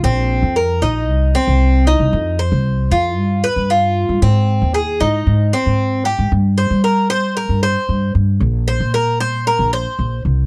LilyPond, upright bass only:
\new Staff \with { instrumentName = "Upright bass" } { \clef bass \time 4/4 \key g \phrygian \tempo 4 = 115 bes,,8. f,8. bes,,8 c,8 r16 c,4 c,16 | f,8. c,8. f,8 g,8 r16 g,4 g,16 | aes,8. ees,8. aes,8 aes,8 r16 aes,4 aes,16 | g,8. g4. g,8 r16 g,8 g,8 |
bes,,8. bes,4. bes,,8 r16 bes,,8 c,8 | }